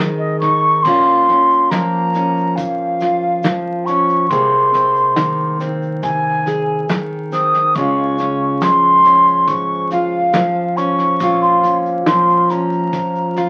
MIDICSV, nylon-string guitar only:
0, 0, Header, 1, 2, 480
1, 0, Start_track
1, 0, Key_signature, -5, "minor"
1, 0, Tempo, 863309
1, 474, Time_signature, 4, 2, 24, 8
1, 7503, End_track
2, 0, Start_track
2, 0, Title_t, "Nylon-string guitar"
2, 0, Program_c, 0, 24
2, 0, Note_on_c, 0, 44, 63
2, 0, Note_on_c, 0, 51, 67
2, 0, Note_on_c, 0, 60, 62
2, 0, Note_on_c, 0, 68, 66
2, 237, Note_on_c, 0, 63, 62
2, 446, Note_off_c, 0, 44, 0
2, 447, Note_off_c, 0, 63, 0
2, 450, Note_off_c, 0, 60, 0
2, 450, Note_off_c, 0, 68, 0
2, 473, Note_on_c, 0, 46, 75
2, 474, Note_off_c, 0, 51, 0
2, 480, Note_on_c, 0, 58, 65
2, 485, Note_on_c, 0, 61, 65
2, 487, Note_on_c, 0, 65, 70
2, 717, Note_off_c, 0, 61, 0
2, 723, Note_on_c, 0, 61, 56
2, 958, Note_on_c, 0, 53, 64
2, 962, Note_off_c, 0, 58, 0
2, 965, Note_on_c, 0, 58, 59
2, 1198, Note_off_c, 0, 61, 0
2, 1204, Note_on_c, 0, 61, 60
2, 1434, Note_off_c, 0, 46, 0
2, 1440, Note_on_c, 0, 41, 60
2, 1673, Note_off_c, 0, 65, 0
2, 1680, Note_on_c, 0, 65, 64
2, 1908, Note_off_c, 0, 53, 0
2, 1915, Note_on_c, 0, 53, 63
2, 2159, Note_off_c, 0, 61, 0
2, 2166, Note_on_c, 0, 61, 61
2, 2366, Note_off_c, 0, 53, 0
2, 2371, Note_off_c, 0, 58, 0
2, 2371, Note_off_c, 0, 61, 0
2, 2397, Note_off_c, 0, 41, 0
2, 2397, Note_off_c, 0, 65, 0
2, 2398, Note_on_c, 0, 48, 82
2, 2401, Note_on_c, 0, 58, 64
2, 2404, Note_on_c, 0, 60, 63
2, 2406, Note_on_c, 0, 68, 74
2, 2634, Note_off_c, 0, 60, 0
2, 2640, Note_on_c, 0, 60, 59
2, 2876, Note_off_c, 0, 48, 0
2, 2877, Note_off_c, 0, 58, 0
2, 2877, Note_on_c, 0, 51, 59
2, 2883, Note_on_c, 0, 58, 60
2, 3110, Note_off_c, 0, 60, 0
2, 3117, Note_on_c, 0, 60, 60
2, 3353, Note_on_c, 0, 48, 65
2, 3592, Note_off_c, 0, 68, 0
2, 3599, Note_on_c, 0, 68, 67
2, 3828, Note_off_c, 0, 51, 0
2, 3833, Note_off_c, 0, 48, 0
2, 3835, Note_on_c, 0, 51, 62
2, 4066, Note_off_c, 0, 60, 0
2, 4072, Note_on_c, 0, 60, 56
2, 4287, Note_off_c, 0, 68, 0
2, 4289, Note_off_c, 0, 58, 0
2, 4313, Note_off_c, 0, 60, 0
2, 4314, Note_off_c, 0, 51, 0
2, 4316, Note_on_c, 0, 49, 81
2, 4324, Note_on_c, 0, 56, 66
2, 4326, Note_on_c, 0, 61, 68
2, 4328, Note_on_c, 0, 65, 73
2, 4557, Note_off_c, 0, 61, 0
2, 4560, Note_on_c, 0, 61, 58
2, 4790, Note_on_c, 0, 53, 64
2, 4791, Note_off_c, 0, 56, 0
2, 4794, Note_off_c, 0, 49, 0
2, 4797, Note_on_c, 0, 56, 58
2, 5036, Note_off_c, 0, 61, 0
2, 5039, Note_on_c, 0, 61, 61
2, 5274, Note_on_c, 0, 44, 68
2, 5521, Note_off_c, 0, 65, 0
2, 5523, Note_on_c, 0, 65, 68
2, 5753, Note_off_c, 0, 53, 0
2, 5755, Note_on_c, 0, 53, 69
2, 5992, Note_off_c, 0, 61, 0
2, 5994, Note_on_c, 0, 61, 59
2, 6204, Note_off_c, 0, 44, 0
2, 6232, Note_on_c, 0, 46, 84
2, 6234, Note_off_c, 0, 56, 0
2, 6236, Note_on_c, 0, 60, 67
2, 6241, Note_off_c, 0, 61, 0
2, 6244, Note_off_c, 0, 65, 0
2, 6244, Note_on_c, 0, 61, 67
2, 6247, Note_on_c, 0, 65, 72
2, 6472, Note_off_c, 0, 61, 0
2, 6478, Note_on_c, 0, 61, 53
2, 6705, Note_off_c, 0, 53, 0
2, 6707, Note_off_c, 0, 60, 0
2, 6708, Note_on_c, 0, 53, 66
2, 6714, Note_on_c, 0, 60, 60
2, 6956, Note_off_c, 0, 61, 0
2, 6962, Note_on_c, 0, 61, 57
2, 7190, Note_on_c, 0, 41, 65
2, 7193, Note_off_c, 0, 46, 0
2, 7431, Note_off_c, 0, 65, 0
2, 7437, Note_on_c, 0, 65, 66
2, 7503, Note_off_c, 0, 41, 0
2, 7503, Note_off_c, 0, 53, 0
2, 7503, Note_off_c, 0, 60, 0
2, 7503, Note_off_c, 0, 61, 0
2, 7503, Note_off_c, 0, 65, 0
2, 7503, End_track
0, 0, End_of_file